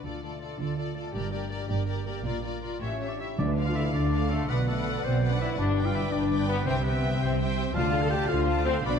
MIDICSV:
0, 0, Header, 1, 11, 480
1, 0, Start_track
1, 0, Tempo, 363196
1, 85, Time_signature, 6, 3, 24, 8
1, 2485, Tempo, 372208
1, 6325, Tempo, 362976
1, 11791, End_track
2, 0, Start_track
2, 0, Title_t, "Violin section"
2, 0, Program_c, 0, 48
2, 68, Note_on_c, 0, 74, 39
2, 302, Note_off_c, 0, 74, 0
2, 318, Note_on_c, 0, 74, 33
2, 528, Note_off_c, 0, 74, 0
2, 544, Note_on_c, 0, 74, 35
2, 790, Note_off_c, 0, 74, 0
2, 807, Note_on_c, 0, 74, 39
2, 1013, Note_off_c, 0, 74, 0
2, 1029, Note_on_c, 0, 74, 42
2, 1251, Note_off_c, 0, 74, 0
2, 1267, Note_on_c, 0, 74, 39
2, 1495, Note_off_c, 0, 74, 0
2, 1511, Note_on_c, 0, 74, 52
2, 1729, Note_off_c, 0, 74, 0
2, 1745, Note_on_c, 0, 74, 47
2, 1958, Note_off_c, 0, 74, 0
2, 1974, Note_on_c, 0, 74, 52
2, 2218, Note_off_c, 0, 74, 0
2, 2234, Note_on_c, 0, 74, 50
2, 2461, Note_off_c, 0, 74, 0
2, 2477, Note_on_c, 0, 74, 47
2, 2705, Note_off_c, 0, 74, 0
2, 2721, Note_on_c, 0, 74, 44
2, 2949, Note_off_c, 0, 74, 0
2, 2965, Note_on_c, 0, 74, 53
2, 3192, Note_off_c, 0, 74, 0
2, 3207, Note_on_c, 0, 74, 49
2, 3439, Note_off_c, 0, 74, 0
2, 3455, Note_on_c, 0, 74, 43
2, 3692, Note_off_c, 0, 74, 0
2, 3696, Note_on_c, 0, 76, 42
2, 3926, Note_off_c, 0, 76, 0
2, 3942, Note_on_c, 0, 76, 39
2, 4170, Note_off_c, 0, 76, 0
2, 4186, Note_on_c, 0, 76, 35
2, 4423, Note_off_c, 0, 76, 0
2, 4674, Note_on_c, 0, 77, 62
2, 5360, Note_off_c, 0, 77, 0
2, 5376, Note_on_c, 0, 77, 57
2, 5834, Note_on_c, 0, 78, 61
2, 5842, Note_off_c, 0, 77, 0
2, 6061, Note_off_c, 0, 78, 0
2, 6077, Note_on_c, 0, 78, 64
2, 6789, Note_off_c, 0, 78, 0
2, 6811, Note_on_c, 0, 78, 64
2, 7282, Note_off_c, 0, 78, 0
2, 7528, Note_on_c, 0, 79, 64
2, 8230, Note_off_c, 0, 79, 0
2, 8246, Note_on_c, 0, 79, 65
2, 8697, Note_off_c, 0, 79, 0
2, 8712, Note_on_c, 0, 79, 71
2, 8943, Note_off_c, 0, 79, 0
2, 8959, Note_on_c, 0, 79, 71
2, 9665, Note_off_c, 0, 79, 0
2, 9692, Note_on_c, 0, 79, 74
2, 10151, Note_on_c, 0, 81, 77
2, 10155, Note_off_c, 0, 79, 0
2, 10378, Note_off_c, 0, 81, 0
2, 10402, Note_on_c, 0, 77, 75
2, 10625, Note_on_c, 0, 81, 84
2, 10641, Note_off_c, 0, 77, 0
2, 10859, Note_on_c, 0, 77, 75
2, 10873, Note_off_c, 0, 81, 0
2, 11111, Note_off_c, 0, 77, 0
2, 11121, Note_on_c, 0, 81, 68
2, 11345, Note_off_c, 0, 81, 0
2, 11360, Note_on_c, 0, 77, 73
2, 11597, Note_on_c, 0, 83, 77
2, 11603, Note_off_c, 0, 77, 0
2, 11791, Note_off_c, 0, 83, 0
2, 11791, End_track
3, 0, Start_track
3, 0, Title_t, "Oboe"
3, 0, Program_c, 1, 68
3, 3688, Note_on_c, 1, 73, 58
3, 4046, Note_on_c, 1, 74, 46
3, 4065, Note_off_c, 1, 73, 0
3, 4177, Note_off_c, 1, 74, 0
3, 4191, Note_on_c, 1, 76, 58
3, 4299, Note_off_c, 1, 76, 0
3, 4429, Note_on_c, 1, 74, 85
3, 4590, Note_off_c, 1, 74, 0
3, 4782, Note_on_c, 1, 77, 74
3, 4887, Note_off_c, 1, 77, 0
3, 4894, Note_on_c, 1, 76, 83
3, 5003, Note_off_c, 1, 76, 0
3, 5128, Note_on_c, 1, 74, 88
3, 5604, Note_on_c, 1, 69, 77
3, 5624, Note_off_c, 1, 74, 0
3, 5860, Note_on_c, 1, 71, 91
3, 5879, Note_off_c, 1, 69, 0
3, 6085, Note_off_c, 1, 71, 0
3, 6093, Note_on_c, 1, 69, 76
3, 6563, Note_on_c, 1, 72, 92
3, 6583, Note_off_c, 1, 69, 0
3, 6949, Note_on_c, 1, 74, 66
3, 6969, Note_off_c, 1, 72, 0
3, 7050, Note_off_c, 1, 74, 0
3, 7058, Note_on_c, 1, 76, 91
3, 7165, Note_off_c, 1, 76, 0
3, 7292, Note_on_c, 1, 74, 96
3, 7641, Note_on_c, 1, 77, 86
3, 7661, Note_off_c, 1, 74, 0
3, 7764, Note_on_c, 1, 76, 79
3, 7784, Note_off_c, 1, 77, 0
3, 7998, Note_on_c, 1, 74, 94
3, 8018, Note_off_c, 1, 76, 0
3, 8478, Note_off_c, 1, 74, 0
3, 8486, Note_on_c, 1, 71, 95
3, 8717, Note_on_c, 1, 72, 92
3, 8737, Note_off_c, 1, 71, 0
3, 8948, Note_on_c, 1, 71, 81
3, 8968, Note_off_c, 1, 72, 0
3, 9436, Note_off_c, 1, 71, 0
3, 9457, Note_on_c, 1, 72, 91
3, 9562, Note_off_c, 1, 72, 0
3, 10154, Note_on_c, 1, 77, 103
3, 10504, Note_on_c, 1, 81, 96
3, 10523, Note_off_c, 1, 77, 0
3, 10609, Note_off_c, 1, 81, 0
3, 10617, Note_on_c, 1, 79, 97
3, 10856, Note_on_c, 1, 77, 104
3, 10876, Note_off_c, 1, 79, 0
3, 11352, Note_on_c, 1, 72, 106
3, 11372, Note_off_c, 1, 77, 0
3, 11599, Note_off_c, 1, 72, 0
3, 11615, Note_on_c, 1, 74, 96
3, 11776, Note_off_c, 1, 74, 0
3, 11791, End_track
4, 0, Start_track
4, 0, Title_t, "Violin section"
4, 0, Program_c, 2, 48
4, 64, Note_on_c, 2, 69, 35
4, 297, Note_off_c, 2, 69, 0
4, 313, Note_on_c, 2, 69, 33
4, 554, Note_off_c, 2, 69, 0
4, 574, Note_on_c, 2, 69, 39
4, 805, Note_off_c, 2, 69, 0
4, 820, Note_on_c, 2, 69, 37
4, 1023, Note_off_c, 2, 69, 0
4, 1039, Note_on_c, 2, 69, 39
4, 1262, Note_off_c, 2, 69, 0
4, 1278, Note_on_c, 2, 69, 38
4, 1515, Note_off_c, 2, 69, 0
4, 1532, Note_on_c, 2, 70, 52
4, 1737, Note_off_c, 2, 70, 0
4, 1753, Note_on_c, 2, 70, 44
4, 1993, Note_off_c, 2, 70, 0
4, 2018, Note_on_c, 2, 70, 45
4, 2229, Note_off_c, 2, 70, 0
4, 2244, Note_on_c, 2, 70, 47
4, 2453, Note_off_c, 2, 70, 0
4, 2469, Note_on_c, 2, 70, 52
4, 2707, Note_off_c, 2, 70, 0
4, 2722, Note_on_c, 2, 70, 41
4, 2958, Note_off_c, 2, 70, 0
4, 2973, Note_on_c, 2, 70, 52
4, 3192, Note_off_c, 2, 70, 0
4, 3208, Note_on_c, 2, 70, 46
4, 3432, Note_off_c, 2, 70, 0
4, 3447, Note_on_c, 2, 70, 42
4, 3689, Note_off_c, 2, 70, 0
4, 3698, Note_on_c, 2, 73, 37
4, 3922, Note_off_c, 2, 73, 0
4, 3937, Note_on_c, 2, 73, 37
4, 4177, Note_off_c, 2, 73, 0
4, 4192, Note_on_c, 2, 73, 33
4, 4427, Note_off_c, 2, 73, 0
4, 4686, Note_on_c, 2, 74, 61
4, 5366, Note_off_c, 2, 74, 0
4, 5382, Note_on_c, 2, 74, 61
4, 5845, Note_off_c, 2, 74, 0
4, 5864, Note_on_c, 2, 74, 56
4, 6081, Note_off_c, 2, 74, 0
4, 6096, Note_on_c, 2, 74, 61
4, 6799, Note_off_c, 2, 74, 0
4, 6824, Note_on_c, 2, 74, 64
4, 7289, Note_off_c, 2, 74, 0
4, 7536, Note_on_c, 2, 74, 68
4, 8241, Note_off_c, 2, 74, 0
4, 8264, Note_on_c, 2, 74, 71
4, 8728, Note_off_c, 2, 74, 0
4, 8746, Note_on_c, 2, 76, 71
4, 8973, Note_off_c, 2, 76, 0
4, 8989, Note_on_c, 2, 76, 68
4, 9671, Note_off_c, 2, 76, 0
4, 9687, Note_on_c, 2, 76, 65
4, 10152, Note_off_c, 2, 76, 0
4, 10155, Note_on_c, 2, 74, 73
4, 10380, Note_off_c, 2, 74, 0
4, 10413, Note_on_c, 2, 77, 69
4, 10647, Note_off_c, 2, 77, 0
4, 10656, Note_on_c, 2, 74, 74
4, 10888, Note_off_c, 2, 74, 0
4, 10891, Note_on_c, 2, 77, 68
4, 11127, Note_off_c, 2, 77, 0
4, 11127, Note_on_c, 2, 74, 74
4, 11348, Note_off_c, 2, 74, 0
4, 11370, Note_on_c, 2, 77, 66
4, 11608, Note_off_c, 2, 77, 0
4, 11610, Note_on_c, 2, 74, 78
4, 11791, Note_off_c, 2, 74, 0
4, 11791, End_track
5, 0, Start_track
5, 0, Title_t, "Flute section"
5, 0, Program_c, 3, 73
5, 4419, Note_on_c, 3, 71, 71
5, 5085, Note_off_c, 3, 71, 0
5, 5144, Note_on_c, 3, 69, 61
5, 5853, Note_off_c, 3, 69, 0
5, 5858, Note_on_c, 3, 74, 83
5, 7266, Note_off_c, 3, 74, 0
5, 7296, Note_on_c, 3, 71, 71
5, 8721, Note_on_c, 3, 76, 92
5, 8734, Note_off_c, 3, 71, 0
5, 9755, Note_off_c, 3, 76, 0
5, 10168, Note_on_c, 3, 74, 84
5, 10870, Note_off_c, 3, 74, 0
5, 10872, Note_on_c, 3, 72, 86
5, 11577, Note_on_c, 3, 71, 95
5, 11600, Note_off_c, 3, 72, 0
5, 11791, Note_off_c, 3, 71, 0
5, 11791, End_track
6, 0, Start_track
6, 0, Title_t, "Viola section"
6, 0, Program_c, 4, 48
6, 77, Note_on_c, 4, 65, 43
6, 296, Note_off_c, 4, 65, 0
6, 312, Note_on_c, 4, 65, 34
6, 531, Note_off_c, 4, 65, 0
6, 547, Note_on_c, 4, 65, 40
6, 772, Note_off_c, 4, 65, 0
6, 788, Note_on_c, 4, 65, 37
6, 1006, Note_off_c, 4, 65, 0
6, 1022, Note_on_c, 4, 65, 41
6, 1255, Note_off_c, 4, 65, 0
6, 1271, Note_on_c, 4, 65, 42
6, 1503, Note_on_c, 4, 67, 54
6, 1512, Note_off_c, 4, 65, 0
6, 1737, Note_off_c, 4, 67, 0
6, 1752, Note_on_c, 4, 67, 43
6, 1980, Note_off_c, 4, 67, 0
6, 1996, Note_on_c, 4, 67, 52
6, 2213, Note_off_c, 4, 67, 0
6, 2229, Note_on_c, 4, 67, 45
6, 2466, Note_off_c, 4, 67, 0
6, 2482, Note_on_c, 4, 67, 49
6, 2711, Note_off_c, 4, 67, 0
6, 2726, Note_on_c, 4, 67, 51
6, 2960, Note_off_c, 4, 67, 0
6, 2960, Note_on_c, 4, 65, 59
6, 3185, Note_off_c, 4, 65, 0
6, 3200, Note_on_c, 4, 65, 44
6, 3416, Note_off_c, 4, 65, 0
6, 3432, Note_on_c, 4, 65, 48
6, 3680, Note_off_c, 4, 65, 0
6, 3680, Note_on_c, 4, 67, 36
6, 3918, Note_off_c, 4, 67, 0
6, 3933, Note_on_c, 4, 67, 34
6, 4161, Note_off_c, 4, 67, 0
6, 4177, Note_on_c, 4, 67, 35
6, 4419, Note_off_c, 4, 67, 0
6, 4656, Note_on_c, 4, 69, 55
6, 5356, Note_off_c, 4, 69, 0
6, 5370, Note_on_c, 4, 69, 64
6, 5838, Note_off_c, 4, 69, 0
6, 5851, Note_on_c, 4, 71, 60
6, 6071, Note_off_c, 4, 71, 0
6, 6086, Note_on_c, 4, 71, 64
6, 6788, Note_off_c, 4, 71, 0
6, 6804, Note_on_c, 4, 71, 69
6, 7279, Note_off_c, 4, 71, 0
6, 7524, Note_on_c, 4, 71, 64
6, 8227, Note_off_c, 4, 71, 0
6, 8243, Note_on_c, 4, 71, 69
6, 8717, Note_off_c, 4, 71, 0
6, 8723, Note_on_c, 4, 72, 70
6, 8954, Note_on_c, 4, 60, 69
6, 8961, Note_off_c, 4, 72, 0
6, 9662, Note_off_c, 4, 60, 0
6, 9675, Note_on_c, 4, 72, 77
6, 10146, Note_off_c, 4, 72, 0
6, 10155, Note_on_c, 4, 65, 82
6, 10380, Note_off_c, 4, 65, 0
6, 10402, Note_on_c, 4, 69, 73
6, 10640, Note_on_c, 4, 65, 82
6, 10641, Note_off_c, 4, 69, 0
6, 10880, Note_on_c, 4, 69, 74
6, 10881, Note_off_c, 4, 65, 0
6, 11121, Note_off_c, 4, 69, 0
6, 11122, Note_on_c, 4, 65, 71
6, 11346, Note_off_c, 4, 65, 0
6, 11368, Note_on_c, 4, 69, 75
6, 11599, Note_on_c, 4, 66, 90
6, 11607, Note_off_c, 4, 69, 0
6, 11791, Note_off_c, 4, 66, 0
6, 11791, End_track
7, 0, Start_track
7, 0, Title_t, "French horn section"
7, 0, Program_c, 5, 60
7, 3693, Note_on_c, 5, 61, 68
7, 4037, Note_off_c, 5, 61, 0
7, 4049, Note_on_c, 5, 62, 62
7, 4176, Note_off_c, 5, 62, 0
7, 4185, Note_on_c, 5, 64, 80
7, 4428, Note_off_c, 5, 64, 0
7, 4432, Note_on_c, 5, 62, 94
7, 4780, Note_on_c, 5, 65, 89
7, 4788, Note_off_c, 5, 62, 0
7, 4897, Note_on_c, 5, 64, 89
7, 4899, Note_off_c, 5, 65, 0
7, 5136, Note_off_c, 5, 64, 0
7, 5143, Note_on_c, 5, 62, 93
7, 5605, Note_off_c, 5, 62, 0
7, 5615, Note_on_c, 5, 57, 94
7, 5852, Note_off_c, 5, 57, 0
7, 5852, Note_on_c, 5, 59, 89
7, 5959, Note_off_c, 5, 59, 0
7, 6072, Note_on_c, 5, 57, 82
7, 6550, Note_off_c, 5, 57, 0
7, 6566, Note_on_c, 5, 60, 93
7, 6929, Note_off_c, 5, 60, 0
7, 6935, Note_on_c, 5, 62, 80
7, 7038, Note_on_c, 5, 64, 100
7, 7053, Note_off_c, 5, 62, 0
7, 7280, Note_off_c, 5, 64, 0
7, 7284, Note_on_c, 5, 62, 113
7, 7641, Note_off_c, 5, 62, 0
7, 7641, Note_on_c, 5, 65, 91
7, 7749, Note_on_c, 5, 64, 87
7, 7766, Note_off_c, 5, 65, 0
7, 7976, Note_on_c, 5, 62, 100
7, 8001, Note_off_c, 5, 64, 0
7, 8462, Note_on_c, 5, 59, 113
7, 8465, Note_off_c, 5, 62, 0
7, 8577, Note_off_c, 5, 59, 0
7, 8703, Note_on_c, 5, 60, 107
7, 8817, Note_off_c, 5, 60, 0
7, 8958, Note_on_c, 5, 59, 78
7, 9421, Note_on_c, 5, 60, 106
7, 9431, Note_off_c, 5, 59, 0
7, 9667, Note_off_c, 5, 60, 0
7, 10142, Note_on_c, 5, 65, 115
7, 10485, Note_off_c, 5, 65, 0
7, 10501, Note_on_c, 5, 69, 114
7, 10615, Note_on_c, 5, 67, 105
7, 10628, Note_off_c, 5, 69, 0
7, 10849, Note_on_c, 5, 65, 115
7, 10868, Note_off_c, 5, 67, 0
7, 11337, Note_off_c, 5, 65, 0
7, 11348, Note_on_c, 5, 60, 124
7, 11460, Note_off_c, 5, 60, 0
7, 11596, Note_on_c, 5, 62, 110
7, 11791, Note_off_c, 5, 62, 0
7, 11791, End_track
8, 0, Start_track
8, 0, Title_t, "Harp"
8, 0, Program_c, 6, 46
8, 0, Note_on_c, 6, 62, 30
8, 0, Note_on_c, 6, 74, 25
8, 76, Note_on_c, 6, 50, 37
8, 322, Note_on_c, 6, 57, 33
8, 555, Note_on_c, 6, 65, 33
8, 794, Note_on_c, 6, 69, 35
8, 1018, Note_off_c, 6, 74, 0
8, 1034, Note_on_c, 6, 74, 35
8, 1256, Note_off_c, 6, 57, 0
8, 1272, Note_on_c, 6, 57, 38
8, 1522, Note_on_c, 6, 43, 49
8, 1536, Note_off_c, 6, 57, 0
8, 1536, Note_off_c, 6, 69, 0
8, 1537, Note_off_c, 6, 50, 0
8, 1537, Note_off_c, 6, 65, 0
8, 1757, Note_on_c, 6, 58, 39
8, 1987, Note_on_c, 6, 67, 45
8, 2237, Note_on_c, 6, 70, 41
8, 2467, Note_off_c, 6, 74, 0
8, 2483, Note_on_c, 6, 74, 48
8, 2710, Note_off_c, 6, 58, 0
8, 2725, Note_on_c, 6, 58, 43
8, 2970, Note_on_c, 6, 46, 54
8, 2976, Note_off_c, 6, 67, 0
8, 2982, Note_off_c, 6, 62, 0
8, 2983, Note_off_c, 6, 43, 0
8, 3200, Note_off_c, 6, 58, 0
8, 3215, Note_on_c, 6, 58, 41
8, 3444, Note_off_c, 6, 74, 0
8, 3451, Note_on_c, 6, 65, 35
8, 3463, Note_on_c, 6, 74, 38
8, 3701, Note_on_c, 6, 45, 41
8, 3711, Note_off_c, 6, 70, 0
8, 3717, Note_off_c, 6, 46, 0
8, 3717, Note_off_c, 6, 65, 0
8, 3719, Note_off_c, 6, 58, 0
8, 3719, Note_off_c, 6, 74, 0
8, 3944, Note_on_c, 6, 61, 30
8, 4188, Note_on_c, 6, 67, 32
8, 4196, Note_on_c, 6, 76, 30
8, 4430, Note_on_c, 6, 50, 72
8, 4449, Note_off_c, 6, 61, 0
8, 4449, Note_off_c, 6, 67, 0
8, 4451, Note_off_c, 6, 45, 0
8, 4452, Note_off_c, 6, 76, 0
8, 4675, Note_on_c, 6, 65, 50
8, 4909, Note_on_c, 6, 57, 52
8, 5125, Note_off_c, 6, 65, 0
8, 5140, Note_on_c, 6, 65, 47
8, 5359, Note_off_c, 6, 57, 0
8, 5374, Note_on_c, 6, 57, 51
8, 5593, Note_off_c, 6, 65, 0
8, 5609, Note_on_c, 6, 65, 54
8, 5851, Note_on_c, 6, 47, 70
8, 5868, Note_off_c, 6, 65, 0
8, 5869, Note_off_c, 6, 57, 0
8, 5871, Note_off_c, 6, 50, 0
8, 6093, Note_on_c, 6, 66, 56
8, 6318, Note_on_c, 6, 54, 56
8, 6551, Note_off_c, 6, 66, 0
8, 6566, Note_on_c, 6, 66, 56
8, 6785, Note_off_c, 6, 54, 0
8, 6801, Note_on_c, 6, 54, 58
8, 7020, Note_off_c, 6, 66, 0
8, 7036, Note_on_c, 6, 66, 62
8, 7277, Note_on_c, 6, 43, 73
8, 7303, Note_off_c, 6, 66, 0
8, 7306, Note_off_c, 6, 54, 0
8, 7311, Note_off_c, 6, 47, 0
8, 7514, Note_on_c, 6, 67, 63
8, 7764, Note_on_c, 6, 50, 65
8, 7987, Note_off_c, 6, 67, 0
8, 8003, Note_on_c, 6, 67, 64
8, 8226, Note_off_c, 6, 50, 0
8, 8242, Note_on_c, 6, 50, 54
8, 8470, Note_off_c, 6, 67, 0
8, 8486, Note_on_c, 6, 67, 59
8, 8723, Note_on_c, 6, 48, 71
8, 8744, Note_off_c, 6, 43, 0
8, 8745, Note_off_c, 6, 50, 0
8, 8948, Note_off_c, 6, 67, 0
8, 8964, Note_on_c, 6, 67, 63
8, 9205, Note_on_c, 6, 55, 60
8, 9429, Note_off_c, 6, 67, 0
8, 9445, Note_on_c, 6, 67, 56
8, 9663, Note_off_c, 6, 55, 0
8, 9679, Note_on_c, 6, 55, 58
8, 9902, Note_off_c, 6, 67, 0
8, 9918, Note_on_c, 6, 67, 67
8, 10157, Note_on_c, 6, 50, 79
8, 10175, Note_off_c, 6, 48, 0
8, 10177, Note_off_c, 6, 55, 0
8, 10178, Note_off_c, 6, 67, 0
8, 10391, Note_on_c, 6, 65, 67
8, 10625, Note_on_c, 6, 57, 69
8, 10853, Note_off_c, 6, 65, 0
8, 10869, Note_on_c, 6, 65, 66
8, 11097, Note_off_c, 6, 57, 0
8, 11113, Note_on_c, 6, 57, 54
8, 11343, Note_off_c, 6, 65, 0
8, 11359, Note_on_c, 6, 65, 67
8, 11598, Note_on_c, 6, 47, 84
8, 11619, Note_off_c, 6, 57, 0
8, 11621, Note_off_c, 6, 50, 0
8, 11622, Note_off_c, 6, 65, 0
8, 11791, Note_off_c, 6, 47, 0
8, 11791, End_track
9, 0, Start_track
9, 0, Title_t, "Timpani"
9, 0, Program_c, 7, 47
9, 4424, Note_on_c, 7, 50, 87
9, 5088, Note_off_c, 7, 50, 0
9, 10166, Note_on_c, 7, 50, 93
9, 10833, Note_off_c, 7, 50, 0
9, 11791, End_track
10, 0, Start_track
10, 0, Title_t, "Cello section"
10, 0, Program_c, 8, 48
10, 66, Note_on_c, 8, 50, 41
10, 678, Note_off_c, 8, 50, 0
10, 789, Note_on_c, 8, 50, 54
10, 1397, Note_off_c, 8, 50, 0
10, 1517, Note_on_c, 8, 43, 58
10, 2122, Note_off_c, 8, 43, 0
10, 2244, Note_on_c, 8, 43, 65
10, 2847, Note_off_c, 8, 43, 0
10, 2965, Note_on_c, 8, 46, 66
10, 3575, Note_off_c, 8, 46, 0
10, 3695, Note_on_c, 8, 45, 49
10, 4311, Note_off_c, 8, 45, 0
10, 4429, Note_on_c, 8, 50, 73
10, 5057, Note_off_c, 8, 50, 0
10, 5141, Note_on_c, 8, 50, 68
10, 5767, Note_off_c, 8, 50, 0
10, 5853, Note_on_c, 8, 47, 73
10, 6484, Note_off_c, 8, 47, 0
10, 6565, Note_on_c, 8, 47, 74
10, 7205, Note_off_c, 8, 47, 0
10, 7282, Note_on_c, 8, 43, 79
10, 7922, Note_off_c, 8, 43, 0
10, 8011, Note_on_c, 8, 43, 77
10, 8647, Note_off_c, 8, 43, 0
10, 8723, Note_on_c, 8, 48, 94
10, 9358, Note_off_c, 8, 48, 0
10, 9432, Note_on_c, 8, 48, 75
10, 10069, Note_off_c, 8, 48, 0
10, 10165, Note_on_c, 8, 50, 85
10, 10798, Note_off_c, 8, 50, 0
10, 10877, Note_on_c, 8, 50, 89
10, 11517, Note_off_c, 8, 50, 0
10, 11592, Note_on_c, 8, 47, 98
10, 11791, Note_off_c, 8, 47, 0
10, 11791, End_track
11, 0, Start_track
11, 0, Title_t, "Double bass section"
11, 0, Program_c, 10, 48
11, 78, Note_on_c, 10, 38, 44
11, 684, Note_off_c, 10, 38, 0
11, 797, Note_on_c, 10, 38, 56
11, 1401, Note_off_c, 10, 38, 0
11, 1519, Note_on_c, 10, 31, 47
11, 2124, Note_off_c, 10, 31, 0
11, 2239, Note_on_c, 10, 31, 62
11, 2844, Note_off_c, 10, 31, 0
11, 2966, Note_on_c, 10, 34, 55
11, 3575, Note_off_c, 10, 34, 0
11, 3693, Note_on_c, 10, 33, 55
11, 4310, Note_off_c, 10, 33, 0
11, 4430, Note_on_c, 10, 38, 71
11, 5058, Note_off_c, 10, 38, 0
11, 5145, Note_on_c, 10, 38, 85
11, 5769, Note_off_c, 10, 38, 0
11, 5853, Note_on_c, 10, 35, 71
11, 6483, Note_off_c, 10, 35, 0
11, 6576, Note_on_c, 10, 35, 81
11, 7210, Note_off_c, 10, 35, 0
11, 7296, Note_on_c, 10, 31, 71
11, 7929, Note_off_c, 10, 31, 0
11, 8015, Note_on_c, 10, 31, 78
11, 8649, Note_off_c, 10, 31, 0
11, 8726, Note_on_c, 10, 36, 83
11, 9360, Note_off_c, 10, 36, 0
11, 9444, Note_on_c, 10, 36, 92
11, 10075, Note_off_c, 10, 36, 0
11, 10161, Note_on_c, 10, 38, 84
11, 10796, Note_off_c, 10, 38, 0
11, 10883, Note_on_c, 10, 38, 91
11, 11520, Note_off_c, 10, 38, 0
11, 11605, Note_on_c, 10, 35, 93
11, 11791, Note_off_c, 10, 35, 0
11, 11791, End_track
0, 0, End_of_file